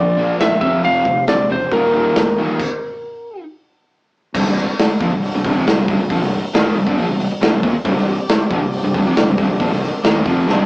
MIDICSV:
0, 0, Header, 1, 9, 480
1, 0, Start_track
1, 0, Tempo, 438596
1, 916, Time_signature, 4, 2, 24, 8
1, 11665, End_track
2, 0, Start_track
2, 0, Title_t, "Lead electric guitar"
2, 0, Program_c, 0, 29
2, 0, Note_on_c, 0, 74, 81
2, 383, Note_off_c, 0, 74, 0
2, 447, Note_on_c, 0, 76, 99
2, 653, Note_off_c, 0, 76, 0
2, 666, Note_on_c, 0, 76, 76
2, 895, Note_off_c, 0, 76, 0
2, 927, Note_on_c, 0, 77, 94
2, 1404, Note_off_c, 0, 77, 0
2, 1409, Note_on_c, 0, 74, 74
2, 1628, Note_off_c, 0, 74, 0
2, 1663, Note_on_c, 0, 72, 67
2, 1886, Note_off_c, 0, 72, 0
2, 1891, Note_on_c, 0, 70, 72
2, 3768, Note_off_c, 0, 70, 0
2, 11665, End_track
3, 0, Start_track
3, 0, Title_t, "Tonewheel organ"
3, 0, Program_c, 1, 16
3, 0, Note_on_c, 1, 58, 53
3, 0, Note_on_c, 1, 65, 47
3, 0, Note_on_c, 1, 72, 53
3, 663, Note_off_c, 1, 58, 0
3, 664, Note_off_c, 1, 72, 0
3, 665, Note_off_c, 1, 65, 0
3, 681, Note_on_c, 1, 53, 66
3, 682, Note_on_c, 1, 60, 64
3, 687, Note_on_c, 1, 67, 71
3, 1872, Note_off_c, 1, 53, 0
3, 1872, Note_off_c, 1, 60, 0
3, 1891, Note_on_c, 1, 58, 70
3, 1893, Note_on_c, 1, 63, 64
3, 2829, Note_off_c, 1, 67, 0
3, 2840, Note_off_c, 1, 58, 0
3, 2841, Note_off_c, 1, 63, 0
3, 8604, Note_on_c, 1, 60, 70
3, 8609, Note_on_c, 1, 67, 59
3, 8610, Note_on_c, 1, 74, 69
3, 10498, Note_off_c, 1, 67, 0
3, 10511, Note_on_c, 1, 69, 55
3, 11665, Note_off_c, 1, 60, 0
3, 11665, Note_off_c, 1, 69, 0
3, 11665, Note_off_c, 1, 74, 0
3, 11665, End_track
4, 0, Start_track
4, 0, Title_t, "Distorted electric guitar"
4, 0, Program_c, 2, 30
4, 0, Note_on_c, 2, 46, 73
4, 0, Note_on_c, 2, 53, 88
4, 168, Note_off_c, 2, 46, 0
4, 170, Note_off_c, 2, 53, 0
4, 185, Note_on_c, 2, 46, 104
4, 192, Note_on_c, 2, 53, 99
4, 199, Note_on_c, 2, 58, 114
4, 415, Note_off_c, 2, 46, 0
4, 419, Note_off_c, 2, 53, 0
4, 422, Note_off_c, 2, 58, 0
4, 433, Note_on_c, 2, 46, 61
4, 436, Note_on_c, 2, 53, 74
4, 650, Note_off_c, 2, 46, 0
4, 652, Note_off_c, 2, 53, 0
4, 673, Note_on_c, 2, 41, 86
4, 679, Note_on_c, 2, 48, 77
4, 685, Note_on_c, 2, 53, 97
4, 894, Note_off_c, 2, 41, 0
4, 903, Note_off_c, 2, 48, 0
4, 907, Note_off_c, 2, 53, 0
4, 907, Note_on_c, 2, 41, 104
4, 915, Note_on_c, 2, 48, 101
4, 919, Note_on_c, 2, 53, 86
4, 1138, Note_off_c, 2, 41, 0
4, 1142, Note_off_c, 2, 48, 0
4, 1144, Note_off_c, 2, 53, 0
4, 1155, Note_on_c, 2, 41, 60
4, 1159, Note_on_c, 2, 48, 62
4, 1373, Note_off_c, 2, 41, 0
4, 1375, Note_off_c, 2, 48, 0
4, 1395, Note_on_c, 2, 41, 59
4, 1401, Note_on_c, 2, 48, 91
4, 1614, Note_off_c, 2, 41, 0
4, 1617, Note_off_c, 2, 48, 0
4, 1636, Note_on_c, 2, 41, 64
4, 1643, Note_on_c, 2, 48, 82
4, 1855, Note_off_c, 2, 41, 0
4, 1858, Note_off_c, 2, 48, 0
4, 1876, Note_on_c, 2, 39, 89
4, 1885, Note_on_c, 2, 46, 84
4, 1885, Note_on_c, 2, 51, 102
4, 2105, Note_off_c, 2, 39, 0
4, 2109, Note_off_c, 2, 46, 0
4, 2109, Note_off_c, 2, 51, 0
4, 2120, Note_on_c, 2, 39, 99
4, 2125, Note_on_c, 2, 46, 107
4, 2134, Note_on_c, 2, 51, 107
4, 2347, Note_off_c, 2, 39, 0
4, 2350, Note_off_c, 2, 46, 0
4, 2354, Note_off_c, 2, 51, 0
4, 2367, Note_on_c, 2, 39, 58
4, 2374, Note_on_c, 2, 46, 77
4, 2582, Note_off_c, 2, 39, 0
4, 2585, Note_off_c, 2, 46, 0
4, 2602, Note_on_c, 2, 39, 87
4, 2610, Note_on_c, 2, 46, 77
4, 2616, Note_on_c, 2, 51, 94
4, 2829, Note_off_c, 2, 39, 0
4, 2833, Note_off_c, 2, 46, 0
4, 2836, Note_off_c, 2, 51, 0
4, 4758, Note_on_c, 2, 36, 98
4, 4763, Note_on_c, 2, 43, 100
4, 4872, Note_off_c, 2, 36, 0
4, 4873, Note_off_c, 2, 43, 0
4, 4885, Note_on_c, 2, 36, 67
4, 4886, Note_on_c, 2, 43, 67
4, 5078, Note_off_c, 2, 36, 0
4, 5079, Note_off_c, 2, 43, 0
4, 5476, Note_on_c, 2, 46, 80
4, 5484, Note_on_c, 2, 53, 109
4, 5594, Note_off_c, 2, 46, 0
4, 5598, Note_off_c, 2, 53, 0
4, 5603, Note_on_c, 2, 36, 66
4, 5606, Note_on_c, 2, 43, 78
4, 5796, Note_off_c, 2, 36, 0
4, 5798, Note_off_c, 2, 43, 0
4, 5844, Note_on_c, 2, 36, 69
4, 5853, Note_on_c, 2, 43, 86
4, 5949, Note_off_c, 2, 36, 0
4, 5956, Note_off_c, 2, 43, 0
4, 5963, Note_on_c, 2, 36, 105
4, 5969, Note_on_c, 2, 43, 110
4, 6076, Note_off_c, 2, 36, 0
4, 6080, Note_off_c, 2, 43, 0
4, 6080, Note_on_c, 2, 41, 92
4, 6089, Note_on_c, 2, 48, 101
4, 6194, Note_off_c, 2, 41, 0
4, 6198, Note_off_c, 2, 48, 0
4, 6198, Note_on_c, 2, 36, 57
4, 6202, Note_on_c, 2, 43, 73
4, 6302, Note_off_c, 2, 36, 0
4, 6307, Note_off_c, 2, 43, 0
4, 6315, Note_on_c, 2, 36, 59
4, 6320, Note_on_c, 2, 43, 73
4, 6421, Note_off_c, 2, 36, 0
4, 6428, Note_off_c, 2, 43, 0
4, 6435, Note_on_c, 2, 36, 83
4, 6441, Note_on_c, 2, 43, 97
4, 6546, Note_off_c, 2, 36, 0
4, 6552, Note_off_c, 2, 43, 0
4, 6560, Note_on_c, 2, 36, 65
4, 6565, Note_on_c, 2, 43, 69
4, 6673, Note_off_c, 2, 36, 0
4, 6677, Note_on_c, 2, 46, 82
4, 6680, Note_off_c, 2, 43, 0
4, 6685, Note_on_c, 2, 53, 93
4, 6788, Note_off_c, 2, 46, 0
4, 6793, Note_on_c, 2, 36, 67
4, 6796, Note_off_c, 2, 53, 0
4, 6800, Note_on_c, 2, 43, 71
4, 6990, Note_off_c, 2, 36, 0
4, 6993, Note_off_c, 2, 43, 0
4, 7154, Note_on_c, 2, 39, 96
4, 7157, Note_on_c, 2, 46, 99
4, 7166, Note_on_c, 2, 51, 94
4, 7384, Note_off_c, 2, 39, 0
4, 7389, Note_on_c, 2, 36, 60
4, 7390, Note_off_c, 2, 46, 0
4, 7394, Note_on_c, 2, 43, 76
4, 7396, Note_off_c, 2, 51, 0
4, 7496, Note_off_c, 2, 43, 0
4, 7505, Note_off_c, 2, 36, 0
4, 7509, Note_on_c, 2, 43, 89
4, 7517, Note_on_c, 2, 50, 104
4, 7628, Note_off_c, 2, 43, 0
4, 7632, Note_off_c, 2, 50, 0
4, 7633, Note_on_c, 2, 46, 97
4, 7641, Note_on_c, 2, 53, 103
4, 7749, Note_off_c, 2, 46, 0
4, 7753, Note_off_c, 2, 53, 0
4, 7753, Note_on_c, 2, 36, 70
4, 7760, Note_on_c, 2, 43, 85
4, 7861, Note_off_c, 2, 36, 0
4, 7865, Note_off_c, 2, 43, 0
4, 7874, Note_on_c, 2, 36, 82
4, 7878, Note_on_c, 2, 43, 87
4, 7985, Note_off_c, 2, 36, 0
4, 7998, Note_off_c, 2, 43, 0
4, 8109, Note_on_c, 2, 36, 100
4, 8114, Note_on_c, 2, 43, 98
4, 8227, Note_off_c, 2, 36, 0
4, 8229, Note_off_c, 2, 43, 0
4, 8241, Note_on_c, 2, 36, 68
4, 8241, Note_on_c, 2, 43, 74
4, 8345, Note_off_c, 2, 36, 0
4, 8350, Note_on_c, 2, 39, 95
4, 8354, Note_off_c, 2, 43, 0
4, 8358, Note_on_c, 2, 46, 98
4, 8467, Note_off_c, 2, 39, 0
4, 8471, Note_off_c, 2, 46, 0
4, 8590, Note_on_c, 2, 36, 103
4, 8596, Note_on_c, 2, 43, 113
4, 8698, Note_off_c, 2, 36, 0
4, 8703, Note_off_c, 2, 43, 0
4, 8712, Note_on_c, 2, 36, 66
4, 8716, Note_on_c, 2, 43, 81
4, 8906, Note_off_c, 2, 36, 0
4, 8908, Note_off_c, 2, 43, 0
4, 9311, Note_on_c, 2, 46, 101
4, 9319, Note_on_c, 2, 53, 98
4, 9420, Note_off_c, 2, 46, 0
4, 9425, Note_on_c, 2, 36, 73
4, 9429, Note_off_c, 2, 53, 0
4, 9433, Note_on_c, 2, 43, 64
4, 9621, Note_off_c, 2, 36, 0
4, 9625, Note_off_c, 2, 43, 0
4, 9667, Note_on_c, 2, 36, 72
4, 9670, Note_on_c, 2, 43, 71
4, 9773, Note_off_c, 2, 36, 0
4, 9780, Note_off_c, 2, 43, 0
4, 9786, Note_on_c, 2, 36, 107
4, 9793, Note_on_c, 2, 43, 126
4, 9898, Note_off_c, 2, 36, 0
4, 9902, Note_on_c, 2, 41, 92
4, 9906, Note_off_c, 2, 43, 0
4, 9911, Note_on_c, 2, 48, 101
4, 10020, Note_off_c, 2, 41, 0
4, 10023, Note_off_c, 2, 48, 0
4, 10025, Note_on_c, 2, 36, 66
4, 10027, Note_on_c, 2, 43, 73
4, 10126, Note_off_c, 2, 36, 0
4, 10133, Note_off_c, 2, 43, 0
4, 10139, Note_on_c, 2, 36, 65
4, 10147, Note_on_c, 2, 43, 71
4, 10244, Note_off_c, 2, 36, 0
4, 10249, Note_off_c, 2, 43, 0
4, 10257, Note_on_c, 2, 36, 92
4, 10263, Note_on_c, 2, 43, 102
4, 10369, Note_off_c, 2, 36, 0
4, 10374, Note_off_c, 2, 43, 0
4, 10382, Note_on_c, 2, 36, 73
4, 10387, Note_on_c, 2, 43, 86
4, 10501, Note_off_c, 2, 36, 0
4, 10505, Note_on_c, 2, 46, 88
4, 10509, Note_off_c, 2, 43, 0
4, 10515, Note_on_c, 2, 53, 108
4, 10621, Note_off_c, 2, 46, 0
4, 10626, Note_off_c, 2, 53, 0
4, 10629, Note_on_c, 2, 36, 63
4, 10635, Note_on_c, 2, 43, 69
4, 10822, Note_off_c, 2, 36, 0
4, 10824, Note_off_c, 2, 43, 0
4, 10985, Note_on_c, 2, 39, 99
4, 10991, Note_on_c, 2, 46, 96
4, 10997, Note_on_c, 2, 51, 107
4, 11219, Note_off_c, 2, 39, 0
4, 11223, Note_off_c, 2, 46, 0
4, 11226, Note_off_c, 2, 51, 0
4, 11227, Note_on_c, 2, 41, 97
4, 11230, Note_on_c, 2, 48, 90
4, 11235, Note_on_c, 2, 53, 100
4, 11460, Note_off_c, 2, 41, 0
4, 11462, Note_off_c, 2, 48, 0
4, 11465, Note_off_c, 2, 53, 0
4, 11467, Note_on_c, 2, 36, 90
4, 11475, Note_on_c, 2, 43, 101
4, 11478, Note_on_c, 2, 48, 113
4, 11665, Note_off_c, 2, 36, 0
4, 11665, Note_off_c, 2, 43, 0
4, 11665, Note_off_c, 2, 48, 0
4, 11665, End_track
5, 0, Start_track
5, 0, Title_t, "Fingered electric bass"
5, 0, Program_c, 3, 33
5, 0, Note_on_c, 3, 34, 87
5, 325, Note_off_c, 3, 34, 0
5, 439, Note_on_c, 3, 34, 93
5, 625, Note_off_c, 3, 34, 0
5, 670, Note_on_c, 3, 29, 86
5, 860, Note_off_c, 3, 29, 0
5, 923, Note_on_c, 3, 29, 80
5, 1109, Note_off_c, 3, 29, 0
5, 1154, Note_on_c, 3, 29, 67
5, 1343, Note_off_c, 3, 29, 0
5, 1404, Note_on_c, 3, 26, 85
5, 1590, Note_off_c, 3, 26, 0
5, 1639, Note_on_c, 3, 28, 91
5, 1828, Note_off_c, 3, 28, 0
5, 1877, Note_on_c, 3, 27, 94
5, 2255, Note_off_c, 3, 27, 0
5, 2365, Note_on_c, 3, 27, 88
5, 2552, Note_off_c, 3, 27, 0
5, 2605, Note_on_c, 3, 33, 81
5, 2793, Note_off_c, 3, 33, 0
5, 4757, Note_on_c, 3, 24, 90
5, 4873, Note_off_c, 3, 24, 0
5, 4884, Note_on_c, 3, 24, 97
5, 5109, Note_off_c, 3, 24, 0
5, 5479, Note_on_c, 3, 34, 104
5, 5594, Note_off_c, 3, 34, 0
5, 5601, Note_on_c, 3, 24, 76
5, 5826, Note_off_c, 3, 24, 0
5, 5843, Note_on_c, 3, 24, 88
5, 5953, Note_off_c, 3, 24, 0
5, 5959, Note_on_c, 3, 24, 90
5, 6074, Note_off_c, 3, 24, 0
5, 6078, Note_on_c, 3, 29, 89
5, 6193, Note_off_c, 3, 29, 0
5, 6199, Note_on_c, 3, 24, 83
5, 6313, Note_off_c, 3, 24, 0
5, 6320, Note_on_c, 3, 24, 96
5, 6434, Note_off_c, 3, 24, 0
5, 6438, Note_on_c, 3, 24, 86
5, 6548, Note_off_c, 3, 24, 0
5, 6555, Note_on_c, 3, 24, 70
5, 6670, Note_off_c, 3, 24, 0
5, 6678, Note_on_c, 3, 34, 81
5, 6789, Note_off_c, 3, 34, 0
5, 6796, Note_on_c, 3, 24, 91
5, 7022, Note_off_c, 3, 24, 0
5, 7153, Note_on_c, 3, 27, 92
5, 7380, Note_off_c, 3, 27, 0
5, 7390, Note_on_c, 3, 24, 85
5, 7507, Note_off_c, 3, 24, 0
5, 7514, Note_on_c, 3, 31, 92
5, 7619, Note_off_c, 3, 31, 0
5, 7626, Note_on_c, 3, 34, 87
5, 7738, Note_off_c, 3, 34, 0
5, 7744, Note_on_c, 3, 24, 80
5, 7863, Note_off_c, 3, 24, 0
5, 7870, Note_on_c, 3, 24, 80
5, 7986, Note_off_c, 3, 24, 0
5, 8108, Note_on_c, 3, 24, 93
5, 8225, Note_off_c, 3, 24, 0
5, 8230, Note_on_c, 3, 24, 98
5, 8345, Note_off_c, 3, 24, 0
5, 8354, Note_on_c, 3, 27, 97
5, 8467, Note_off_c, 3, 27, 0
5, 8591, Note_on_c, 3, 24, 96
5, 8705, Note_off_c, 3, 24, 0
5, 8711, Note_on_c, 3, 24, 100
5, 8936, Note_off_c, 3, 24, 0
5, 9312, Note_on_c, 3, 34, 110
5, 9425, Note_off_c, 3, 34, 0
5, 9431, Note_on_c, 3, 24, 82
5, 9655, Note_off_c, 3, 24, 0
5, 9663, Note_on_c, 3, 24, 82
5, 9779, Note_off_c, 3, 24, 0
5, 9786, Note_on_c, 3, 24, 98
5, 9891, Note_off_c, 3, 24, 0
5, 9897, Note_on_c, 3, 29, 100
5, 10016, Note_off_c, 3, 29, 0
5, 10026, Note_on_c, 3, 24, 77
5, 10134, Note_off_c, 3, 24, 0
5, 10141, Note_on_c, 3, 24, 94
5, 10257, Note_off_c, 3, 24, 0
5, 10266, Note_on_c, 3, 24, 101
5, 10380, Note_off_c, 3, 24, 0
5, 10385, Note_on_c, 3, 24, 79
5, 10499, Note_off_c, 3, 24, 0
5, 10510, Note_on_c, 3, 34, 86
5, 10611, Note_off_c, 3, 34, 0
5, 10617, Note_on_c, 3, 24, 90
5, 10846, Note_off_c, 3, 24, 0
5, 10985, Note_on_c, 3, 27, 101
5, 11210, Note_off_c, 3, 27, 0
5, 11222, Note_on_c, 3, 29, 94
5, 11448, Note_off_c, 3, 29, 0
5, 11453, Note_on_c, 3, 24, 85
5, 11665, Note_off_c, 3, 24, 0
5, 11665, End_track
6, 0, Start_track
6, 0, Title_t, "Muted distorted electric guitar strokes"
6, 7998, Note_on_c, 9, 29, 57
6, 8108, Note_off_c, 9, 29, 0
6, 8474, Note_on_c, 9, 29, 58
6, 8584, Note_off_c, 9, 29, 0
6, 11665, End_track
7, 0, Start_track
7, 0, Title_t, "Muted fingered electric bass strokes"
7, 7998, Note_on_c, 9, 29, 39
7, 8107, Note_off_c, 9, 29, 0
7, 8475, Note_on_c, 9, 29, 42
7, 8584, Note_off_c, 9, 29, 0
7, 11665, End_track
8, 0, Start_track
8, 0, Title_t, "Muted overdriven electric guitar strokes"
8, 7982, Note_on_c, 9, 29, 64
8, 8091, Note_off_c, 9, 29, 0
8, 8469, Note_on_c, 9, 29, 65
8, 8578, Note_off_c, 9, 29, 0
8, 11665, End_track
9, 0, Start_track
9, 0, Title_t, "Drums"
9, 434, Note_on_c, 9, 46, 46
9, 444, Note_on_c, 9, 38, 105
9, 544, Note_off_c, 9, 46, 0
9, 553, Note_off_c, 9, 38, 0
9, 671, Note_on_c, 9, 36, 102
9, 780, Note_off_c, 9, 36, 0
9, 912, Note_on_c, 9, 46, 56
9, 1022, Note_off_c, 9, 46, 0
9, 1153, Note_on_c, 9, 36, 75
9, 1262, Note_off_c, 9, 36, 0
9, 1390, Note_on_c, 9, 46, 52
9, 1400, Note_on_c, 9, 38, 100
9, 1500, Note_off_c, 9, 46, 0
9, 1510, Note_off_c, 9, 38, 0
9, 1874, Note_on_c, 9, 46, 58
9, 1877, Note_on_c, 9, 36, 96
9, 1984, Note_off_c, 9, 46, 0
9, 1986, Note_off_c, 9, 36, 0
9, 2356, Note_on_c, 9, 46, 58
9, 2366, Note_on_c, 9, 38, 109
9, 2465, Note_off_c, 9, 46, 0
9, 2475, Note_off_c, 9, 38, 0
9, 2838, Note_on_c, 9, 49, 108
9, 2839, Note_on_c, 9, 36, 107
9, 2947, Note_off_c, 9, 49, 0
9, 2948, Note_off_c, 9, 36, 0
9, 4758, Note_on_c, 9, 36, 113
9, 4761, Note_on_c, 9, 49, 127
9, 4867, Note_off_c, 9, 36, 0
9, 4871, Note_off_c, 9, 49, 0
9, 4887, Note_on_c, 9, 38, 33
9, 4996, Note_off_c, 9, 38, 0
9, 5003, Note_on_c, 9, 46, 59
9, 5013, Note_on_c, 9, 38, 32
9, 5113, Note_off_c, 9, 46, 0
9, 5122, Note_off_c, 9, 38, 0
9, 5238, Note_on_c, 9, 46, 88
9, 5248, Note_on_c, 9, 38, 115
9, 5348, Note_off_c, 9, 46, 0
9, 5358, Note_off_c, 9, 38, 0
9, 5478, Note_on_c, 9, 36, 116
9, 5480, Note_on_c, 9, 46, 63
9, 5587, Note_off_c, 9, 36, 0
9, 5589, Note_off_c, 9, 46, 0
9, 5720, Note_on_c, 9, 46, 86
9, 5830, Note_off_c, 9, 46, 0
9, 5959, Note_on_c, 9, 36, 109
9, 5963, Note_on_c, 9, 46, 67
9, 6068, Note_off_c, 9, 36, 0
9, 6073, Note_off_c, 9, 46, 0
9, 6203, Note_on_c, 9, 46, 96
9, 6213, Note_on_c, 9, 38, 103
9, 6313, Note_off_c, 9, 46, 0
9, 6323, Note_off_c, 9, 38, 0
9, 6438, Note_on_c, 9, 36, 110
9, 6446, Note_on_c, 9, 46, 61
9, 6547, Note_off_c, 9, 36, 0
9, 6555, Note_off_c, 9, 46, 0
9, 6677, Note_on_c, 9, 36, 115
9, 6683, Note_on_c, 9, 46, 96
9, 6786, Note_off_c, 9, 36, 0
9, 6792, Note_off_c, 9, 46, 0
9, 6812, Note_on_c, 9, 38, 32
9, 6922, Note_off_c, 9, 38, 0
9, 6923, Note_on_c, 9, 46, 55
9, 7033, Note_off_c, 9, 46, 0
9, 7158, Note_on_c, 9, 46, 89
9, 7167, Note_on_c, 9, 38, 117
9, 7267, Note_off_c, 9, 46, 0
9, 7277, Note_off_c, 9, 38, 0
9, 7393, Note_on_c, 9, 46, 63
9, 7502, Note_off_c, 9, 46, 0
9, 7514, Note_on_c, 9, 36, 101
9, 7624, Note_off_c, 9, 36, 0
9, 7637, Note_on_c, 9, 46, 77
9, 7746, Note_off_c, 9, 46, 0
9, 7879, Note_on_c, 9, 46, 66
9, 7989, Note_off_c, 9, 46, 0
9, 8119, Note_on_c, 9, 46, 82
9, 8129, Note_on_c, 9, 38, 117
9, 8228, Note_off_c, 9, 46, 0
9, 8238, Note_off_c, 9, 38, 0
9, 8352, Note_on_c, 9, 36, 112
9, 8358, Note_on_c, 9, 46, 62
9, 8462, Note_off_c, 9, 36, 0
9, 8467, Note_off_c, 9, 46, 0
9, 8592, Note_on_c, 9, 36, 116
9, 8595, Note_on_c, 9, 46, 84
9, 8701, Note_off_c, 9, 36, 0
9, 8704, Note_off_c, 9, 46, 0
9, 8727, Note_on_c, 9, 38, 33
9, 8835, Note_on_c, 9, 46, 56
9, 8836, Note_off_c, 9, 38, 0
9, 8944, Note_off_c, 9, 46, 0
9, 9070, Note_on_c, 9, 46, 80
9, 9080, Note_on_c, 9, 38, 116
9, 9180, Note_off_c, 9, 46, 0
9, 9189, Note_off_c, 9, 38, 0
9, 9309, Note_on_c, 9, 36, 109
9, 9310, Note_on_c, 9, 46, 53
9, 9418, Note_off_c, 9, 36, 0
9, 9419, Note_off_c, 9, 46, 0
9, 9548, Note_on_c, 9, 46, 81
9, 9658, Note_off_c, 9, 46, 0
9, 9788, Note_on_c, 9, 36, 100
9, 9790, Note_on_c, 9, 46, 73
9, 9898, Note_off_c, 9, 36, 0
9, 9900, Note_off_c, 9, 46, 0
9, 10028, Note_on_c, 9, 46, 87
9, 10038, Note_on_c, 9, 38, 116
9, 10137, Note_off_c, 9, 46, 0
9, 10147, Note_off_c, 9, 38, 0
9, 10266, Note_on_c, 9, 36, 116
9, 10270, Note_on_c, 9, 46, 66
9, 10376, Note_off_c, 9, 36, 0
9, 10379, Note_off_c, 9, 46, 0
9, 10505, Note_on_c, 9, 36, 107
9, 10505, Note_on_c, 9, 46, 91
9, 10615, Note_off_c, 9, 36, 0
9, 10615, Note_off_c, 9, 46, 0
9, 10640, Note_on_c, 9, 38, 34
9, 10749, Note_off_c, 9, 38, 0
9, 10751, Note_on_c, 9, 46, 59
9, 10761, Note_on_c, 9, 38, 32
9, 10861, Note_off_c, 9, 46, 0
9, 10871, Note_off_c, 9, 38, 0
9, 10985, Note_on_c, 9, 46, 91
9, 10995, Note_on_c, 9, 38, 127
9, 11095, Note_off_c, 9, 46, 0
9, 11105, Note_off_c, 9, 38, 0
9, 11225, Note_on_c, 9, 36, 108
9, 11227, Note_on_c, 9, 46, 68
9, 11334, Note_off_c, 9, 36, 0
9, 11336, Note_off_c, 9, 46, 0
9, 11478, Note_on_c, 9, 38, 70
9, 11587, Note_off_c, 9, 38, 0
9, 11665, End_track
0, 0, End_of_file